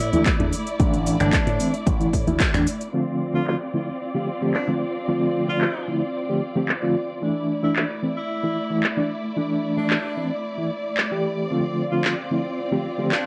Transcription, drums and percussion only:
0.13 closed hi-hat, shaker
0.26 kick, clap, closed hi-hat, shaker
0.40 closed hi-hat
0.53 open hi-hat, shaker
0.67 closed hi-hat, shaker
0.80 kick, closed hi-hat, shaker
0.94 closed hi-hat, shaker
1.06 open hi-hat, shaker
1.20 finger snap, closed hi-hat, shaker
1.33 kick, clap, closed hi-hat, shaker
1.47 closed hi-hat, shaker
1.60 open hi-hat, shaker
1.74 closed hi-hat, shaker
1.87 kick, closed hi-hat, shaker
2.01 closed hi-hat, shaker
2.13 kick, open hi-hat, shaker
2.28 closed hi-hat, shaker
2.40 kick, clap, closed hi-hat, shaker
2.54 finger snap, closed hi-hat, shaker
2.67 open hi-hat, shaker
2.81 closed hi-hat, shaker
2.94 crash
3.47 clap
4.54 clap
5.61 clap
6.69 clap
7.76 clap
8.83 clap
9.90 clap
10.97 clap
12.04 clap
13.12 clap

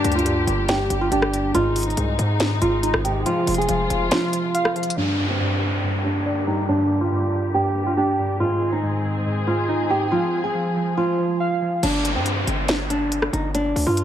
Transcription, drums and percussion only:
0.04 closed hi-hat
0.12 closed hi-hat
0.19 closed hi-hat
0.26 closed hi-hat
0.48 closed hi-hat
0.69 snare, closed hi-hat
0.90 closed hi-hat
1.12 closed hi-hat
1.22 cross-stick
1.34 closed hi-hat
1.55 closed hi-hat
1.76 closed hi-hat, open hi-hat
1.83 closed hi-hat
1.90 closed hi-hat
1.97 closed hi-hat
2.19 closed hi-hat
2.40 snare, closed hi-hat
2.62 closed hi-hat
2.83 closed hi-hat
2.94 cross-stick
3.05 closed hi-hat
3.26 closed hi-hat
3.47 closed hi-hat, open hi-hat
3.54 closed hi-hat
3.62 closed hi-hat
3.69 closed hi-hat
3.90 closed hi-hat
4.11 snare, closed hi-hat
4.33 closed hi-hat
4.55 closed hi-hat
4.65 cross-stick
4.76 closed hi-hat
4.83 closed hi-hat
4.90 closed hi-hat
11.83 closed hi-hat, crash
12.05 closed hi-hat
12.26 closed hi-hat
12.47 closed hi-hat
12.68 snare, closed hi-hat
12.90 closed hi-hat
13.12 closed hi-hat
13.22 cross-stick
13.34 closed hi-hat
13.55 closed hi-hat
13.76 open hi-hat
13.97 closed hi-hat

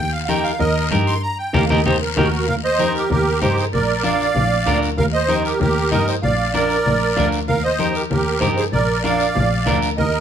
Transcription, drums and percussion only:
0.29 high conga, short guiro
0.45 short guiro
0.60 long guiro
0.92 high conga, short guiro
1.07 short guiro
1.54 low conga, long guiro
1.70 low conga, long guiro
1.86 low conga, long guiro
2.17 low conga, long guiro
2.48 high conga, low conga, long guiro
2.79 high conga, short guiro
2.95 short guiro
3.10 high conga, low conga, long guiro
3.42 high conga, low conga, short guiro
3.58 short guiro
3.73 high conga, low conga, long guiro
4.04 high conga, short guiro
4.20 short guiro
4.35 high conga, low conga, long guiro
4.67 high conga, short guiro
4.83 short guiro
4.98 high conga, low conga, long guiro
5.29 high conga, short guiro
5.45 short guiro
5.61 high conga, low conga, long guiro
5.92 high conga, low conga, short guiro
6.08 short guiro
6.23 high conga, low conga, long guiro
6.54 high conga, short guiro
6.70 short guiro
6.86 high conga, low conga, long guiro
7.17 high conga, short guiro
7.32 short guiro
7.48 high conga, low conga, long guiro
7.79 high conga, short guiro
7.95 short guiro
8.11 high conga, low conga, long guiro
8.42 high conga, low conga, short guiro
8.58 short guiro
8.73 high conga, low conga, long guiro
9.04 high conga, short guiro
9.20 short guiro
9.36 high conga, low conga, long guiro
9.67 high conga, low conga, short guiro
9.83 short guiro
9.98 high conga, low conga, long guiro

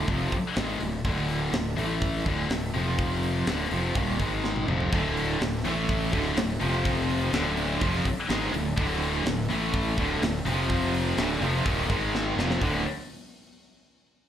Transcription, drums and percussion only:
0.08 kick, open hi-hat
0.32 kick, open hi-hat
0.56 snare, open hi-hat
0.80 open hi-hat
1.05 kick, open hi-hat
1.28 open hi-hat
1.53 snare, open hi-hat
1.78 open hi-hat
2.02 kick, open hi-hat
2.26 kick, open hi-hat
2.50 snare, open hi-hat
2.74 open hi-hat
2.98 kick, open hi-hat
3.23 open hi-hat
3.47 snare, open hi-hat
3.71 open hi-hat
3.95 kick, open hi-hat
4.19 kick, open hi-hat
4.44 snare
4.56 high tom
4.68 mid tom
4.80 floor tom
4.93 kick, open hi-hat
5.17 open hi-hat
5.41 snare, open hi-hat
5.65 open hi-hat
5.89 kick, open hi-hat
6.13 kick, open hi-hat
6.37 snare, open hi-hat
6.61 open hi-hat
6.85 kick, open hi-hat
7.09 open hi-hat
7.33 snare, open hi-hat
7.57 open hi-hat
7.81 kick, open hi-hat
8.05 kick, open hi-hat
8.30 snare, open hi-hat
8.54 open hi-hat
8.78 kick, open hi-hat
9.02 open hi-hat
9.26 snare, open hi-hat
9.50 open hi-hat
9.74 kick, open hi-hat
9.98 kick
10.22 snare, open hi-hat
10.46 open hi-hat
10.70 kick, open hi-hat
10.94 open hi-hat
11.18 snare, open hi-hat
11.42 open hi-hat
11.66 kick, open hi-hat
11.90 kick, open hi-hat
12.15 snare
12.39 snare
12.50 snare
12.62 kick, open hi-hat

